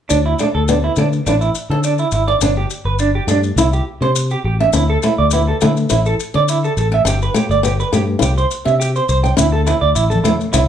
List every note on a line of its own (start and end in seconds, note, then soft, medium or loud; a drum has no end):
0.09 0.33 D2 medium
0.09 0.18 D4 medium
0.09 0.35 D4 medium
0.09 maracas medium
0.26 0.33 E4 medium
0.39 0.65 A3 medium
0.39 0.48 D4 medium
0.39 maracas medium
0.55 0.88 D2 medium
0.55 0.62 A4 medium
0.68 0.93 B3 medium
0.68 0.77 D4 medium
0.68 maracas medium
0.84 0.91 E4 medium
0.96 1.20 D3 medium
0.96 1.22 A3 medium
0.96 1.06 D4 medium
0.96 maracas medium
1.13 maracas soft
1.26 1.49 A1 medium
1.26 1.35 D4 medium
1.26 1.52 E4 medium
1.26 maracas medium
1.41 1.49 E4 medium
1.41 maracas soft
1.55 maracas medium
1.70 2.03 D3 medium
1.70 1.95 D4 medium
1.70 1.78 A4 medium
1.84 1.93 D4 medium
1.84 maracas medium
1.98 2.07 E4 medium
1.98 maracas soft
2.12 2.35 G#1 medium
2.12 2.22 E4 medium
2.12 maracas medium
2.28 2.40 D4 medium
2.28 2.35 D5 medium
2.41 2.64 G1 medium
2.41 2.50 D4 medium
2.41 2.67 D4 medium
2.41 maracas medium
2.57 2.65 G4 medium
2.70 maracas medium
2.85 3.19 G1 medium
2.85 2.93 B4 medium
2.99 3.08 D4 medium
2.99 maracas medium
3.15 3.23 G4 medium
3.27 3.51 G2 medium
3.27 3.53 A3 medium
3.27 3.38 D4 medium
3.27 maracas medium
3.43 maracas soft
3.56 3.80 C2 medium
3.56 3.66 E4 medium
3.56 3.83 E4 medium
3.56 maracas medium
3.73 3.81 G4 medium
3.73 maracas soft
4.01 4.35 C3 medium
4.01 4.27 D4 medium
4.01 4.10 C5 medium
4.16 maracas medium
4.31 4.39 G4 medium
4.31 maracas soft
4.44 4.67 A1 medium
4.44 4.53 G4 medium
4.60 4.72 D4 medium
4.60 4.68 E5 medium
4.73 4.96 D2 medium
4.73 4.98 D4 medium
4.73 4.83 E4 medium
4.73 maracas medium
4.90 4.97 A4 medium
5.03 5.28 A3 medium
5.03 5.12 E4 medium
5.03 maracas medium
5.18 5.52 D2 medium
5.18 5.26 D5 medium
5.31 5.57 B3 medium
5.31 5.41 E4 medium
5.31 maracas medium
5.48 5.56 A4 medium
5.61 5.85 D3 medium
5.61 5.86 A3 medium
5.61 5.70 E4 medium
5.61 maracas medium
5.77 maracas soft
5.90 6.13 A1 medium
5.90 6.14 E4 medium
5.90 5.99 E4 medium
5.90 maracas medium
6.06 6.14 A4 medium
6.06 maracas soft
6.20 maracas medium
6.34 6.68 D3 medium
6.34 6.58 D4 medium
6.34 6.43 D5 medium
6.48 6.57 E4 medium
6.48 maracas medium
6.64 6.72 A4 medium
6.64 maracas soft
6.77 6.99 A1 medium
6.77 6.87 A4 medium
6.77 maracas medium
6.92 7.04 A3 medium
6.92 7.01 E5 medium
7.05 7.28 G1 medium
7.05 7.30 D4 medium
7.05 7.16 G4 medium
7.05 maracas medium
7.22 7.30 B4 medium
7.22 maracas soft
7.34 7.59 A3 medium
7.34 7.44 G4 medium
7.34 maracas medium
7.49 7.83 G1 medium
7.49 7.58 D5 medium
7.49 maracas soft
7.63 7.88 B3 medium
7.63 7.73 G4 medium
7.63 maracas medium
7.80 7.87 B4 medium
7.80 maracas soft
7.93 8.15 G2 medium
7.93 8.17 A3 medium
7.93 8.02 G4 medium
7.93 maracas medium
8.19 8.44 C2 medium
8.19 8.45 E4 medium
8.19 8.30 G4 medium
8.19 maracas medium
8.38 8.45 C5 medium
8.38 maracas soft
8.51 maracas medium
8.65 8.99 C3 medium
8.65 8.90 D4 medium
8.65 8.73 E5 medium
8.65 maracas soft
8.80 8.88 G4 medium
8.80 maracas medium
8.96 9.03 C5 medium
8.96 maracas soft
9.09 9.31 C2 medium
9.09 9.17 C5 medium
9.09 maracas medium
9.23 9.35 D4 medium
9.23 9.31 G5 medium
9.23 maracas soft
9.37 9.72 D2 medium
9.37 9.61 D4 medium
9.37 9.46 E4 medium
9.37 maracas loud
9.53 9.60 A4 medium
9.67 9.75 E4 medium
9.67 muted steel-string acoustic guitar stroke medium
9.67 maracas medium
9.81 9.92 D2 medium
9.81 9.89 D5 medium
9.95 10.18 A1 medium
9.95 10.03 E4 medium
9.95 maracas medium
10.10 10.18 A4 medium
10.10 high conga medium
10.10 maracas soft
10.24 10.49 A3 medium
10.24 10.32 E4 medium
10.24 low conga medium
10.24 maracas medium
10.41 maracas soft
10.53 10.68 C2 loud
10.53 10.61 E4 medium
10.53 muted steel-string acoustic guitar stroke medium
10.53 maracas medium